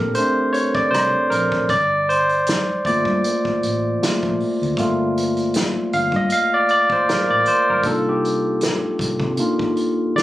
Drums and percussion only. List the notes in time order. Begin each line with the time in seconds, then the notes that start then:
0.15 closed hi-hat
0.54 closed hi-hat
0.75 kick
0.94 cross-stick, closed hi-hat
1.31 closed hi-hat
1.52 kick
1.69 kick, closed hi-hat
2.10 closed hi-hat
2.29 closed hi-hat
2.47 snare, closed hi-hat
2.85 kick, closed hi-hat
3.05 kick
3.24 closed hi-hat
3.45 kick
3.63 closed hi-hat
4.03 snare, closed hi-hat
4.23 kick
4.40 open hi-hat
4.63 closed hi-hat
4.77 kick, closed hi-hat
5.17 closed hi-hat
5.37 closed hi-hat
5.54 snare, closed hi-hat
5.93 closed hi-hat
6.12 kick
6.30 closed hi-hat
6.69 closed hi-hat
6.90 kick
7.09 snare, closed hi-hat
7.46 closed hi-hat
7.83 kick, closed hi-hat
8.25 closed hi-hat
8.61 snare, closed hi-hat
8.99 kick, closed hi-hat
9.20 kick
9.37 closed hi-hat
9.59 kick
9.77 closed hi-hat
10.18 snare, closed hi-hat